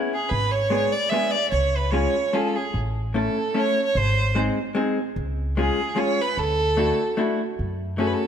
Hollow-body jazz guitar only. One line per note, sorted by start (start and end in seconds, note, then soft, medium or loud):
0.00 0.12 B3 medium
0.00 0.12 C#4 medium
0.00 0.13 E4 medium
0.00 0.13 G#4 medium
0.70 0.93 G#3 medium
0.70 0.93 B3 medium
0.70 0.94 D4 soft
0.70 0.94 G#4 medium
1.11 1.34 G#3 medium
1.11 1.34 B3 medium
1.11 1.34 D4 soft
1.11 1.35 G#4 medium
1.92 2.15 G#3 soft
1.92 2.15 C#4 soft
1.92 2.15 F4 medium
1.92 2.15 G#4 soft
2.33 2.56 G#3 medium
2.33 2.56 C#4 soft
2.33 2.56 F4 soft
2.33 2.56 G#4 medium
3.14 3.37 A3 soft
3.14 3.37 C#4 soft
3.14 3.37 E4 soft
3.14 3.37 A4 medium
3.54 3.77 A3 medium
3.54 3.77 C#4 soft
3.54 3.78 E4 soft
3.54 3.78 A4 soft
4.35 4.58 G#3 medium
4.35 4.58 C4 soft
4.35 4.58 D#4 soft
4.35 4.58 G#4 soft
4.75 4.98 G#3 medium
4.75 4.98 C4 medium
4.75 4.98 D#4 soft
4.75 4.98 G#4 medium
5.57 5.79 G#3 medium
5.57 5.79 C#4 soft
5.57 5.80 F4 soft
5.57 5.80 G#4 medium
5.96 6.19 G#3 medium
5.96 6.19 C#4 soft
5.96 6.19 F4 medium
5.96 6.19 G#4 medium
6.77 7.00 A3 soft
6.77 7.00 D4 soft
6.77 7.00 E4 soft
6.77 7.01 F#4 medium
7.17 7.40 A3 medium
7.17 7.40 D4 medium
7.17 7.41 E4 medium
7.17 7.41 F#4 medium
7.98 8.21 A3 medium
7.98 8.22 C#4 medium
7.98 8.22 F#4 soft
7.98 8.22 G#4 medium